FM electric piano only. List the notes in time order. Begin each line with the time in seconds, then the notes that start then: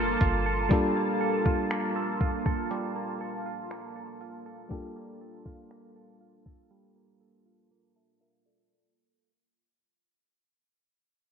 Already playing: G3 A#3 D4 F4 A4
0.69 G3 A#3 D4 F4
0.73 A4
4.69 G3 A#3 D4 F4
4.73 A4
7.96 E5 A5
8.21 A#4 E5
8.46 A4 D5